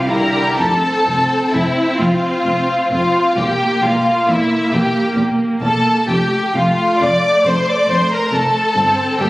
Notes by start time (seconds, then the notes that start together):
Already playing: C2
0.07 D3 G3 E4 G4 A#4 A#5
0.58 F1 F2 C4 A4 A5
1.06 F1 F2
1.52 F1 F2 E4 E5
1.98 F1 F2 F4 F5
2.45 F1 F2
2.91 F1 F2 F4 F5
3.36 E1 E2 A#3 G4 G5
3.82 E1 E2 F4 F5
4.27 E1 E2 E4 E5
4.72 E1 E2 G4 G5
5.15 E1 E2
5.61 E1 E2 A4 A5
6.08 F1 F2 A3 G4 G5
6.54 F1 F2 F4 F5
7.01 F1 F2 D5 D6
7.44 F1 F2 C5 C6
7.67 D5 D6
7.88 F1 F2 C6
7.92 C5
8.11 A#4 A#5
8.32 F1 F2 A4 A5
8.75 G1 G2 C4
9.17 G1 G2 A#3 G4 G5